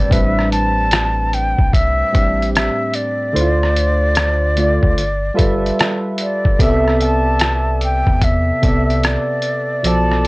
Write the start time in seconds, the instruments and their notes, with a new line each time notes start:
Already playing: synth keys A2 G3 C4 D4 B4 D5 E5 G5 A5, flute D5
0.09 sub bass A1, synth keys A2 G3 C4 D4 B4, flute E5, kick, closed hi-hat
0.39 cross-stick
0.52 flute A5, closed hi-hat
0.91 cross-stick, closed hi-hat
1.33 flute G5, closed hi-hat
1.58 sub bass C2, kick
1.73 flute E5, kick, closed hi-hat
2.12 sub bass A1, synth keys A2 G3 C4 D4 G4, kick, closed hi-hat
2.42 closed hi-hat
2.54 flute E5, cross-stick, closed hi-hat
2.94 flute D5, closed hi-hat
3.33 sub bass D2, synth keys D3 A3 E4 C5, closed hi-hat
3.41 synth keys F4
3.63 cross-stick
3.77 closed hi-hat
4.15 cross-stick, closed hi-hat
4.56 synth keys D3 A3 F4 D5, closed hi-hat
4.83 sub bass D2, kick
4.98 sub bass G1, closed hi-hat
5.34 synth keys G3 F4 A4 B4 E5
5.39 sub bass G1, kick, closed hi-hat
5.66 closed hi-hat
5.79 cross-stick, closed hi-hat
6.18 flute D5, closed hi-hat
6.45 sub bass G1, kick
6.59 sub bass C2, synth keys C3 B3 A4 D5 E5, flute E5, kick, closed hi-hat
6.88 cross-stick
7.01 flute A5, closed hi-hat
7.39 cross-stick, closed hi-hat
7.81 flute G5, closed hi-hat
8.07 sub bass E2, kick
8.22 flute E5, kick, closed hi-hat
8.62 sub bass C2, synth keys C3 B3 A4 D5 E5, kick, closed hi-hat
8.90 closed hi-hat
9.04 flute D5, cross-stick, closed hi-hat
9.42 closed hi-hat
9.83 sub bass B1, synth keys B2 F3 A4 D5, flute A5, closed hi-hat
10.12 cross-stick